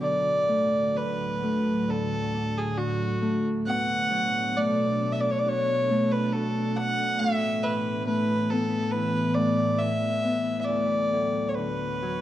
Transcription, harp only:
0.00 1.87 D3 medium
0.00 1.25 B3 soft
0.00 0.94 D4 soft
0.00 0.59 F#4 soft
0.49 1.43 A3 soft
0.95 2.34 D4 soft
1.43 3.21 A3 soft
1.88 2.76 D3 soft
2.34 5.02 D4 soft
2.77 3.73 D3 soft
3.22 4.56 A3 medium
3.67 7.26 B2 medium
4.10 7.26 F#3 soft
4.56 5.89 A3 medium
5.02 6.76 D4 medium
5.46 6.33 F#4 medium
5.90 8.07 A3 medium
6.34 8.77 F#4 medium
6.76 9.56 D4 medium
7.21 10.73 A2 medium
7.64 10.73 E3 soft
8.07 9.36 A3 medium
8.51 10.24 B3 medium
8.95 9.80 E4 soft
9.36 12.21 A3 medium
9.80 12.21 E4 medium
10.25 12.21 B3 medium
10.68 12.21 D2 medium
11.13 11.61 A2 soft
11.57 12.21 D3 soft
12.02 12.21 F#3 medium

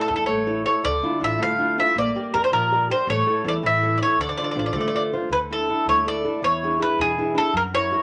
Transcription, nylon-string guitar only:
0.10 0.25 E4 soft
0.10 0.25 A4 soft
0.10 0.25 D5 soft
0.28 0.65 A3 medium
0.47 0.64 E4 soft
0.47 0.65 A4 soft
0.47 0.65 C#5 soft
0.66 0.80 E4 soft
0.66 0.81 A4 soft
0.66 0.81 C#5 soft
0.84 1.21 D3 soft
1.03 1.19 D4 soft
1.03 1.19 E4 soft
1.03 1.20 F4 soft
1.20 1.51 D4 soft
1.20 1.51 E4 soft
1.20 1.51 F4 soft
1.39 1.76 A3 medium
1.58 1.76 D4 soft
1.58 1.77 E4 soft
1.58 1.77 F4 soft
1.78 1.92 D4 soft
1.78 1.93 E4 soft
1.78 1.93 F4 medium
1.95 2.32 A#3 medium
2.16 2.33 G4 medium
2.16 2.34 A#4 soft
2.16 2.34 D5 medium
2.34 2.64 G4 soft
2.34 2.64 A#4 soft
2.34 2.64 D5 soft
2.52 2.88 F3 medium
2.71 2.89 G4 soft
2.71 2.89 A#4 soft
2.71 2.90 D5 soft
2.90 3.04 G4 medium
2.90 3.04 A#4 soft
2.90 3.05 D5 soft
3.09 3.44 A3 medium
3.26 3.43 E4 soft
3.26 3.44 A4 soft
3.26 3.45 C#5 soft
3.44 3.74 E4 soft
3.44 3.75 A4 soft
3.44 3.75 C#5 soft
3.63 3.99 E3 medium
3.83 4.00 E4 soft
3.83 4.01 A4 soft
3.83 4.02 C#5 medium
4.02 4.16 E4 soft
4.02 4.16 A4 soft
4.02 4.16 C#5 soft
4.20 4.55 D3 medium
4.38 4.55 D4 soft
4.38 4.55 F4 soft
4.38 4.56 C5 soft
4.56 4.86 D4 soft
4.56 4.86 F4 soft
4.56 4.87 C5 soft
4.75 5.12 A3 medium
4.94 5.12 D4 soft
4.94 5.12 F4 soft
4.94 5.12 C5 soft
5.13 5.27 D4 soft
5.13 5.28 F4 soft
5.13 5.28 C5 medium
5.31 5.68 D3 soft
5.51 5.67 D4 soft
5.51 5.68 E4 soft
5.51 5.68 A4 soft
5.69 5.99 D4 soft
5.69 5.99 E4 soft
5.69 5.99 A4 soft
5.88 6.24 A3 medium
6.06 6.23 D4 soft
6.06 6.23 E4 soft
6.06 6.24 A4 soft
6.24 6.39 D4 soft
6.24 6.39 E4 soft
6.24 6.40 A4 medium
6.43 6.79 E3 medium
6.63 6.78 D4 soft
6.63 6.79 E4 soft
6.63 6.79 G#4 medium
6.79 7.10 D4 soft
6.79 7.10 E4 soft
6.79 7.10 G#4 soft
6.99 7.35 B2 medium
7.18 7.33 D4 soft
7.18 7.33 E4 soft
7.18 7.34 G#4 soft
7.34 7.50 D4 soft
7.34 7.50 E4 soft
7.34 7.50 G#4 soft
7.53 7.90 F#3 soft
7.74 7.90 E4 soft
7.74 7.90 F#4 soft
7.74 7.91 A#4 soft
7.92 8.03 E4 soft
7.92 8.03 F#4 soft
7.92 8.03 A#4 soft

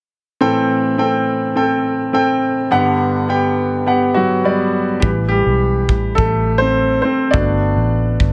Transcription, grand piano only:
0.41 2.68 A2 soft
0.41 2.68 E3 soft
0.41 0.82 C4 medium
0.41 0.82 A4 medium
0.41 0.82 G5 medium
0.98 1.39 C4 medium
0.98 1.40 A4 soft
0.98 1.40 G5 medium
1.56 1.97 C4 medium
1.56 1.97 A4 medium
1.56 1.97 G5 medium
2.13 2.54 C4 medium
2.13 2.55 A4 medium
2.13 2.55 G5 medium
2.71 4.98 G2 soft
2.71 4.98 D3 medium
2.71 3.12 B3 medium
2.71 3.12 G4 medium
2.71 3.13 F#5 medium
3.29 3.70 B3 medium
3.29 3.70 G4 medium
3.29 3.70 G5 medium
3.86 4.28 B3 medium
3.86 4.28 G4 medium
3.86 4.28 F#5 medium
4.14 4.99 F#3 medium
4.14 5.04 F#4 medium
4.44 4.86 G3 medium
4.44 4.85 B3 medium
4.44 4.86 D5 medium
5.00 7.29 E3 soft
5.00 5.09 G3 soft
5.00 5.07 G4 medium
5.00 7.29 B4 soft
5.29 6.14 G3 medium
5.29 6.19 G4 medium
6.15 6.58 A3 medium
6.15 6.61 A4 medium
6.58 7.02 C4 medium
6.58 7.00 C5 medium
7.02 7.11 C4 medium
7.02 7.09 C5 medium
7.31 8.33 A3 soft
7.31 8.33 B3 soft
7.31 8.33 D4 medium
7.31 8.33 F#4 soft
7.31 8.33 D5 medium

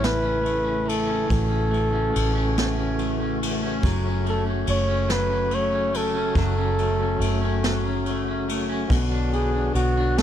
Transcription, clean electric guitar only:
0.00 1.26 A2 medium
0.00 0.43 A3 medium
0.00 0.22 C#4 medium
0.23 0.64 C#4 medium
0.43 0.85 A3 medium
0.64 1.06 C#4 medium
0.86 1.70 A3 medium
1.07 1.48 C#4 medium
1.27 2.55 A2 medium
1.49 1.92 C#4 medium
1.71 2.13 A3 medium
1.92 2.34 C#4 medium
2.13 2.99 A3 medium
2.35 2.77 C#4 medium
2.57 3.92 A2 medium
2.78 3.20 C#4 medium
2.99 3.42 A3 medium
3.20 3.62 C#4 medium
3.43 4.25 A3 medium
3.63 4.05 C#4 medium
3.84 5.08 F#3 medium
4.06 4.45 C#4 medium
4.26 4.65 A3 medium
4.46 4.87 C#4 medium
4.66 5.50 A3 medium
4.88 5.29 C#4 medium
5.09 6.35 F#3 medium
5.30 5.71 C#4 medium
5.51 5.91 A3 medium
5.72 6.13 C#4 medium
5.93 6.77 A3 medium
6.15 6.57 C#4 medium
6.36 7.63 F#3 medium
6.58 6.98 C#4 medium
6.79 7.19 A3 medium
6.99 7.40 C#4 medium
7.20 8.05 A3 medium
7.42 7.84 C#4 medium
7.63 10.22 F#3 medium
7.85 8.27 C#4 medium
8.06 8.47 A3 medium
8.28 8.68 C#4 soft
8.49 8.99 A3 medium
8.69 8.98 C#4 medium
8.89 10.16 B2 medium
9.12 9.52 D4 medium
9.33 9.74 B3 medium
9.54 9.96 D4 medium
9.75 10.22 B3 medium
9.97 10.22 D4 medium
10.17 10.22 B2 medium

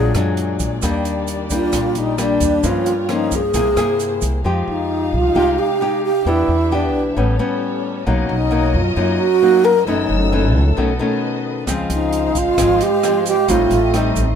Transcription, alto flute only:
0.00 0.56 G#4 medium
1.53 2.00 F4 medium
1.98 2.20 D#4 medium
2.20 2.68 D4 medium
2.66 3.10 F4 medium
3.12 3.37 D#4 medium
3.35 4.24 G#4 medium
4.69 5.16 D#4 medium
5.14 5.60 F4 loud
5.59 6.03 G4 loud
6.05 6.30 G4 loud
6.28 6.76 E4 medium
6.74 7.18 D4 medium
8.30 8.77 D#4 medium
8.75 9.21 F4 medium
9.19 9.66 F#4 loud
9.65 9.86 A#4 loud
9.87 10.73 D#4 medium
11.94 12.39 D#4 medium
12.38 12.84 F4 loud
12.83 13.27 G4 loud
13.27 13.51 G4 loud
13.50 13.98 F4 loud
13.96 14.35 D#4 medium

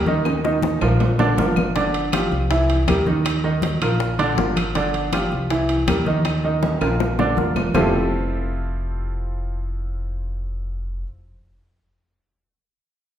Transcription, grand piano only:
0.07 0.38 D#3 medium
0.07 0.38 D#4 medium
0.07 0.38 D#5 medium
0.44 0.75 D#3 medium
0.44 0.75 D#4 medium
0.44 0.75 D#5 medium
0.82 1.12 F3 medium
0.82 1.13 F4 medium
0.82 1.13 A#4 medium
1.19 1.35 D3 medium
1.19 1.35 D4 medium
1.19 1.35 D5 medium
1.38 1.69 F3 medium
1.38 1.69 F4 medium
1.38 1.69 A#4 medium
1.76 2.06 D3 medium
1.76 2.07 D4 medium
1.76 2.07 D5 medium
2.13 2.44 F3 medium
2.13 2.44 F4 medium
2.13 2.44 G4 medium
2.50 2.81 E3 medium
2.50 2.81 E4 medium
2.50 2.82 E5 medium
2.88 3.03 G3 medium
2.88 3.03 G4 medium
2.88 3.03 A#4 medium
3.07 3.37 D#3 medium
3.07 3.38 D#4 medium
3.07 3.38 D#5 medium
3.44 3.75 D#3 medium
3.44 3.75 D#4 medium
3.44 3.75 D#5 medium
3.82 4.13 F3 medium
3.82 4.13 F4 medium
3.82 4.13 A#4 medium
4.19 4.34 D3 medium
4.19 4.35 D4 medium
4.19 4.35 D5 medium
4.38 4.69 F3 medium
4.38 4.69 F4 medium
4.38 4.69 A#4 medium
4.76 5.06 D3 medium
4.76 5.06 D4 medium
4.76 5.07 D5 medium
5.13 5.44 F3 medium
5.13 5.44 F4 medium
5.13 5.44 G4 medium
5.51 5.81 E3 medium
5.51 5.81 E4 medium
5.51 5.82 E5 medium
5.88 6.03 G3 medium
5.88 6.03 G4 medium
5.88 6.04 A#4 medium
6.07 6.37 D#3 medium
6.07 6.37 D#4 medium
6.07 6.37 D#5 medium
6.44 6.75 D#3 medium
6.44 6.75 D#4 medium
6.44 6.75 D#5 medium
6.81 7.12 F3 medium
6.81 7.12 F4 medium
6.81 7.12 A#4 medium
7.19 7.34 D3 medium
7.19 7.34 D4 medium
7.19 7.34 D5 medium
7.37 7.68 F3 medium
7.37 7.68 F4 medium
7.37 7.68 A#4 medium
7.74 11.03 F3 medium
7.74 11.03 C4 medium
7.74 11.03 E4 medium
7.74 11.03 F4 medium
7.74 11.03 G4 medium
7.74 11.04 A4 medium

